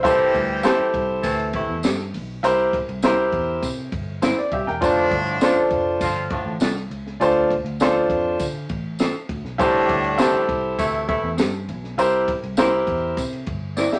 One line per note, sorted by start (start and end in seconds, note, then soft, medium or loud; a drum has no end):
0.03 0.31 C2 loud
0.03 0.91 E3 loud
0.03 0.90 G3 loud
0.03 0.91 C4 loud
0.03 0.35 E4 loud
0.03 0.35 G4 medium
0.03 0.90 G4 loud
0.03 0.35 A4 medium
0.03 0.35 C5 loud
0.03 kick loud
0.03 ride medium
0.03 tambourine medium
0.34 0.61 D2 medium
0.34 kick loud
0.34 ride medium
0.63 0.75 C4 medium
0.63 1.26 E4 medium
0.63 1.26 G4 medium
0.63 0.76 G4 medium
0.63 1.26 A4 medium
0.63 0.76 A4 medium
0.63 1.27 C5 loud
0.63 snare loud
0.63 ride medium
0.63 tambourine medium
0.79 muted picked electric bass stroke medium
0.94 1.20 C2 loud
0.94 kick loud
0.94 ride medium
1.23 1.63 D2 loud
1.23 1.48 E3 loud
1.23 1.48 A3 loud
1.23 1.48 C4 loud
1.23 1.48 A4 loud
1.23 kick loud
1.23 ride medium
1.23 tambourine medium
1.40 ride soft
1.53 1.78 C3 medium
1.53 1.78 E3 medium
1.53 1.78 A3 medium
1.53 1.78 E4 medium
1.53 kick loud
1.53 ride medium
1.69 1.82 E2 medium
1.83 2.15 G2 medium
1.83 1.95 C4 medium
1.83 1.95 G4 medium
1.83 1.96 A4 medium
1.83 snare loud
1.83 ride medium
1.83 tambourine loud
1.99 snare soft
2.14 2.40 B1 medium
2.14 open hi-hat soft
2.14 ride medium
2.43 2.83 C2 loud
2.43 2.74 E4 medium
2.43 2.74 G4 medium
2.43 2.75 A#4 medium
2.43 2.75 C5 loud
2.43 hi-hat pedal medium
2.43 ride medium
2.43 tambourine medium
2.73 kick loud
2.73 ride medium
2.89 3.28 C2 loud
2.89 ride medium
3.02 3.14 C4 medium
3.02 3.65 E4 medium
3.02 3.15 E4 loud
3.02 3.65 G4 medium
3.02 3.66 A#4 medium
3.02 3.15 A#4 medium
3.02 3.66 C5 loud
3.02 snare loud
3.02 ride medium
3.02 tambourine loud
3.32 3.59 E2 medium
3.32 kick loud
3.32 ride medium
3.62 3.89 C3 loud
3.62 kick loud
3.62 ride medium
3.62 tambourine medium
3.92 4.31 G1 medium
3.92 kick loud
3.92 ride medium
4.22 4.33 C4 medium
4.22 4.37 E4 medium
4.22 4.34 E4 medium
4.22 4.34 A#4 medium
4.22 4.37 C5 medium
4.22 snare loud
4.22 ride medium
4.22 tambourine loud
4.38 4.52 D5 medium
4.38 snare soft
4.52 4.65 C2 loud
4.52 4.67 G4 medium
4.52 4.67 E5 medium
4.52 kick loud
4.52 ride medium
4.67 4.80 E1 loud
4.67 4.96 A#4 medium
4.67 4.96 G5 medium
4.67 snare soft
4.80 5.08 F1 loud
4.80 5.68 A2 loud
4.80 5.68 D3 loud
4.80 5.68 F3 loud
4.80 5.12 D4 medium
4.80 5.68 D4 loud
4.80 5.13 F4 medium
4.80 5.13 A4 medium
4.80 5.13 C5 medium
4.80 kick loud
4.80 ride medium
4.80 tambourine medium
5.11 5.38 G1 loud
5.11 kick loud
5.11 ride medium
5.27 ride soft
5.41 6.03 D4 medium
5.41 5.53 D4 medium
5.41 6.04 F4 medium
5.41 5.53 F4 medium
5.41 6.04 A4 medium
5.41 5.54 A4 loud
5.41 6.04 C5 loud
5.41 snare loud
5.41 ride medium
5.41 tambourine loud
5.56 muted picked electric bass stroke medium
5.70 5.97 F1 loud
5.70 kick loud
5.70 ride medium
6.00 6.40 G1 loud
6.00 6.25 D3 medium
6.00 6.25 F3 loud
6.00 6.25 C4 medium
6.00 6.25 F4 loud
6.00 kick loud
6.00 ride medium
6.00 tambourine medium
6.16 ride soft
6.30 6.55 A2 medium
6.30 6.55 D3 medium
6.30 6.55 F3 medium
6.30 6.55 D4 medium
6.30 kick loud
6.30 ride medium
6.46 6.59 A1 medium
6.60 6.87 C2 medium
6.60 6.72 D4 medium
6.60 6.73 F4 loud
6.60 6.73 A4 medium
6.60 snare loud
6.60 ride medium
6.60 tambourine medium
6.76 snare soft
6.90 7.17 C#2 medium
6.90 ride medium
7.07 snare soft
7.20 7.60 D2 loud
7.20 7.51 D4 medium
7.20 7.52 F4 medium
7.20 7.52 A4 medium
7.20 7.52 C5 loud
7.20 ride medium
7.20 tambourine medium
7.51 kick medium
7.51 ride medium
7.65 8.04 D2 loud
7.65 ride soft
7.80 7.92 C4 medium
7.80 8.42 D4 medium
7.80 8.43 F4 medium
7.80 7.92 F4 loud
7.80 8.43 A4 medium
7.80 7.93 A4 loud
7.80 8.43 C5 loud
7.80 snare loud
7.80 ride medium
7.80 tambourine loud
8.09 8.36 F2 medium
8.09 kick loud
8.09 ride medium
8.40 8.66 D3 loud
8.40 kick loud
8.40 ride medium
8.40 tambourine medium
8.69 9.09 A1 medium
8.69 kick loud
8.69 ride medium
8.99 9.11 C4 medium
8.99 9.11 F4 medium
8.99 9.12 A4 loud
8.99 snare loud
8.99 ride medium
8.99 tambourine medium
9.29 9.43 D2 medium
9.29 kick medium
9.29 ride medium
9.45 9.58 B1 loud
9.45 snare soft
9.58 9.85 C2 loud
9.58 10.45 A2 loud
9.58 10.45 D3 loud
9.58 10.45 G3 loud
9.58 10.45 D4 loud
9.58 9.90 E4 medium
9.58 9.90 G4 medium
9.58 9.90 A4 medium
9.58 9.91 C5 loud
9.58 kick loud
9.58 ride medium
9.58 tambourine medium
9.89 10.15 D2 medium
9.89 kick loud
9.89 ride medium
10.04 ride soft
10.18 10.30 C4 medium
10.18 10.80 E4 loud
10.18 10.81 G4 medium
10.18 10.30 G4 medium
10.18 10.81 A4 medium
10.18 10.31 A4 medium
10.18 10.81 C5 loud
10.18 snare loud
10.18 ride medium
10.18 tambourine loud
10.34 muted picked electric bass stroke medium
10.49 10.75 C2 loud
10.49 kick medium
10.49 ride medium
10.78 11.18 D2 loud
10.78 11.03 C3 loud
10.78 11.03 E3 loud
10.78 11.02 A3 loud
10.78 11.03 E4 loud
10.78 kick loud
10.78 ride medium
10.78 tambourine medium
10.94 ride soft
11.07 11.32 C3 medium
11.07 11.32 E3 medium
11.07 11.31 A3 medium
11.07 11.32 E4 medium
11.07 kick loud
11.07 ride medium
11.24 11.37 E2 medium
11.38 11.70 G2 medium
11.38 11.49 C4 medium
11.38 11.50 G4 medium
11.38 11.50 A4 medium
11.38 snare loud
11.38 ride medium
11.38 tambourine loud
11.68 11.95 B1 loud
11.68 ride medium
11.84 snare soft
11.97 12.37 C2 loud
11.97 12.29 E4 medium
11.97 12.29 G4 medium
11.97 12.30 A#4 medium
11.97 12.30 C5 loud
11.97 ride medium
11.97 tambourine medium
12.28 kick loud
12.28 ride medium
12.43 12.83 C2 loud
12.43 ride soft
12.57 12.69 C4 loud
12.57 13.20 E4 medium
12.57 12.69 E4 medium
12.57 13.20 G4 medium
12.57 13.20 A#4 medium
12.57 12.70 A#4 loud
12.57 13.20 C5 loud
12.57 snare loud
12.57 ride medium
12.57 tambourine loud
12.87 13.13 E2 medium
12.87 kick loud
12.87 ride medium
13.17 13.43 C3 loud
13.17 kick loud
13.17 ride medium
13.17 tambourine medium
13.33 ride soft
13.46 13.86 G1 loud
13.46 kick loud
13.46 ride medium
13.77 13.88 C4 medium
13.77 13.89 E4 medium
13.77 13.89 A#4 medium
13.77 13.91 D5 medium
13.77 snare medium
13.77 tambourine medium
13.92 13.99 G4 medium
13.92 13.99 E5 medium
13.92 snare medium